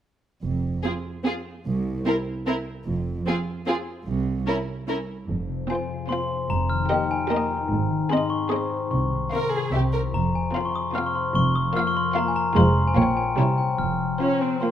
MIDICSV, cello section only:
0, 0, Header, 1, 2, 480
1, 0, Start_track
1, 0, Key_signature, -4, "minor"
1, 0, Tempo, 404585
1, 511, Time_signature, 3, 2, 24, 8
1, 15386, Tempo, 412655
1, 17412, End_track
2, 0, Start_track
2, 0, Title_t, "Cello section"
2, 0, Program_c, 0, 48
2, 516, Note_on_c, 0, 41, 36
2, 918, Note_off_c, 0, 41, 0
2, 1964, Note_on_c, 0, 36, 44
2, 2362, Note_off_c, 0, 36, 0
2, 3401, Note_on_c, 0, 41, 46
2, 3794, Note_off_c, 0, 41, 0
2, 4833, Note_on_c, 0, 36, 45
2, 5228, Note_off_c, 0, 36, 0
2, 6287, Note_on_c, 0, 41, 44
2, 6663, Note_off_c, 0, 41, 0
2, 7722, Note_on_c, 0, 41, 52
2, 8095, Note_off_c, 0, 41, 0
2, 9149, Note_on_c, 0, 44, 53
2, 9522, Note_off_c, 0, 44, 0
2, 10596, Note_on_c, 0, 48, 45
2, 10970, Note_off_c, 0, 48, 0
2, 11559, Note_on_c, 0, 48, 43
2, 11935, Note_off_c, 0, 48, 0
2, 12035, Note_on_c, 0, 41, 46
2, 12415, Note_off_c, 0, 41, 0
2, 13480, Note_on_c, 0, 41, 55
2, 13856, Note_off_c, 0, 41, 0
2, 14908, Note_on_c, 0, 41, 59
2, 15284, Note_off_c, 0, 41, 0
2, 15385, Note_on_c, 0, 46, 53
2, 15758, Note_off_c, 0, 46, 0
2, 15856, Note_on_c, 0, 48, 51
2, 16235, Note_off_c, 0, 48, 0
2, 16348, Note_on_c, 0, 41, 42
2, 16726, Note_off_c, 0, 41, 0
2, 17412, End_track
0, 0, End_of_file